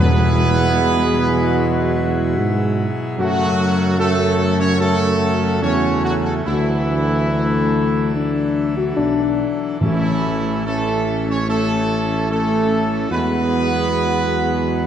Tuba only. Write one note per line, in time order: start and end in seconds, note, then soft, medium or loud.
0.00 2.40 E2 loud
2.38 2.92 G#2 loud
3.19 5.64 F#2 loud
5.62 6.45 E2 medium
6.46 8.93 D2 medium
8.97 9.45 B1 medium
9.81 13.07 A1 medium
13.11 14.87 E2 medium